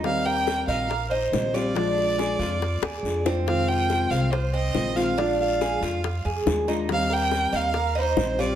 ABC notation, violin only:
X:1
M:4/4
L:1/8
Q:1/4=140
K:Eb
V:1 name="Violin"
f g2 f2 c2 d- | d6- d z | f g2 f c e2 f- | f f4 z3 |
f g2 f2 c2 d |]